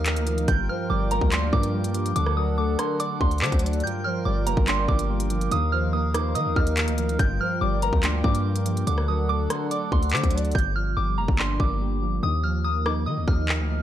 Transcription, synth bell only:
0.00 0.44 F6 medium
0.48 0.64 G6 medium
0.69 0.85 F6 medium
0.90 1.06 D6 medium
1.11 1.27 A#5 medium
1.32 1.48 C6 medium
1.53 2.12 D6 loud
2.16 2.32 D6 medium
2.37 2.53 D#6 medium
2.58 2.74 D6 medium
2.79 2.95 C6 medium
3.00 3.16 D6 medium
3.21 3.37 C6 medium
3.42 3.58 D6 medium
3.84 3.99 G6 medium
4.04 4.20 F6 medium
4.25 4.41 D6 medium
4.47 4.62 A#5 medium
4.68 4.84 C6 medium
4.89 5.48 D6 medium
5.52 5.68 D#6 loud
5.72 5.88 F6 medium
5.93 6.09 D#6 medium
6.14 6.30 D6 medium
6.35 6.51 D#6 medium
6.56 7.16 F6 medium
7.19 7.35 G6 medium
7.41 7.56 F6 medium
7.61 7.77 D6 medium
7.83 7.98 A#5 medium
8.03 8.19 C6 medium
8.24 8.83 D6 medium
8.87 9.03 D6 medium
9.08 9.24 D#6 medium
9.29 9.45 D6 medium
9.50 9.66 C6 medium
9.71 9.87 D6 medium
9.92 10.08 C6 medium
10.13 10.29 D6 medium
10.55 10.71 G6 medium
10.76 10.92 F6 medium
10.97 11.13 D6 medium
11.18 11.34 A#5 medium
11.39 11.55 C6 medium
11.60 12.19 D6 medium
12.23 12.39 D#6 loud
12.44 12.59 F6 medium
12.64 12.80 D#6 medium
12.86 13.02 D6 medium
13.06 13.22 D#6 medium
13.28 13.82 F6 medium

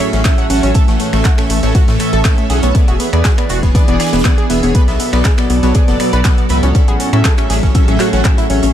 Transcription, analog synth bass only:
0.13 0.23 A1 medium
0.50 0.61 A1 loud
0.63 0.73 A1 medium
0.88 0.98 A1 medium
1.13 1.23 A1 medium
1.50 1.61 A1 medium
1.63 1.73 A1 medium
1.88 1.98 A2 medium
2.13 2.23 A1 medium
2.50 2.61 B1 loud
2.63 2.73 B1 medium
2.88 2.98 E1 medium
3.13 3.23 E2 medium
3.50 3.61 E1 medium
3.63 3.73 E1 medium
3.88 3.98 E1 medium
4.13 4.23 E1 medium
4.50 4.61 E1 loud
4.63 4.73 E1 medium
4.88 4.98 B1 medium
5.13 5.23 B1 medium
5.50 5.61 B1 medium
5.63 5.73 B1 medium
5.88 5.98 F#1 medium
6.13 6.23 B1 medium
6.50 6.61 C#2 loud
6.63 6.73 C#2 medium
6.88 6.98 A1 medium
7.13 7.23 A2 medium
7.50 7.61 A1 medium
7.63 7.73 A1 medium
7.88 7.98 A1 medium
8.13 8.23 A1 medium
8.50 8.61 A1 loud
8.63 8.73 A1 medium

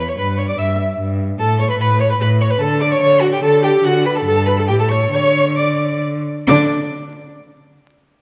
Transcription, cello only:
0.00 0.13 E2 medium
0.18 0.54 G2 medium
0.59 0.95 G2 medium
1.00 1.35 G2 medium
1.40 1.76 A2 medium
1.80 2.16 A2 medium
2.21 2.57 A2 medium
2.61 2.97 D3 medium
3.02 3.39 D3 medium
3.44 3.80 D3 medium
3.84 4.23 D3 medium
4.26 4.70 G2 medium
4.69 5.12 A2 medium
5.13 6.24 D3 medium
6.48 6.72 D3 loud

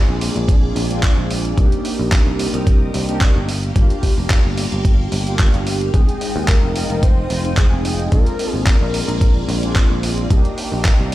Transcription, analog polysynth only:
0.00 0.86 G#3 medium
0.00 0.87 C4 medium
0.00 0.87 D4 medium
0.00 0.87 F4 medium
0.89 1.54 G#3 medium
0.89 1.54 C4 medium
0.89 1.55 D4 medium
0.89 1.55 F4 loud
1.56 3.05 A#3 medium
1.56 3.05 D4 medium
1.56 3.05 D#4 medium
1.56 3.05 G4 medium
3.08 3.47 A#3 medium
3.08 3.47 D4 medium
3.08 3.47 D#4 medium
3.08 3.47 G4 loud
3.75 5.23 A#3 medium
3.75 5.23 D4 medium
3.75 5.24 F4 medium
3.75 5.24 G4 medium
5.26 5.91 A#3 medium
5.26 5.91 D4 medium
5.26 5.91 F4 medium
5.26 5.91 G4 loud
5.93 7.41 G#3 medium
5.93 7.41 C4 medium
5.93 7.41 D#4 medium
5.93 7.42 G5 medium
7.44 8.09 G#3 loud
7.44 8.09 C4 medium
7.44 8.09 D#4 medium
7.44 8.10 G5 loud
8.11 9.59 G#3 medium
8.11 9.59 C4 medium
8.11 9.60 D4 medium
8.11 9.60 F4 medium
9.62 10.27 G#3 loud
9.62 10.27 C4 medium
9.62 10.27 D4 medium
9.62 10.28 F4 loud
10.29 11.15 A#3 medium
10.29 11.15 D4 medium
10.29 11.15 D#4 medium
10.29 11.15 G4 medium

